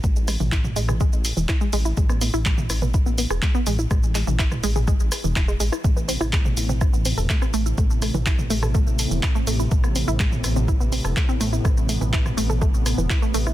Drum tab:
HH |--o---o---o---o-|--o---o---o---o-|--o---o---o---o-|--o---o---o---o-|
SH |xxxxxxxxxxxxxxxx|xxxxxxxxxxxxxxxx|xxxxxxxxxxxxxxxx|xxxxxxxxxxxxxxxx|
CP |----x-------x---|----x-------x---|--x-x-------x---|----x-------x---|
SD |--r----r----r---|-r----r----r----|r----r----r----r|---r----r----r--|
T2 |---o-o-o--------|-----o-o--------|---o-o-o--------|-----o-o--------|
BD |o---o---o---o---|o---o---o---o---|o---o---o---o---|o---o---o---o---|

HH |--o---o---o---o-|--o---o---o---o-|--o---o---o---o-|
SH |xxxxxxxxxxxxxxxx|xxxxxxxxxxxxxxxx|xxxxxxxxxxxxxxxx|
CP |----x-------x---|----x-------x---|----x-------x---|
SD |--r----r----r---|-r----r----r----|r----r----r----r|
T2 |---o-o-o--------|-----o-o--------|---o-o-o--------|
BD |o---o---o---o---|o---o---o---o---|o---o---o---o---|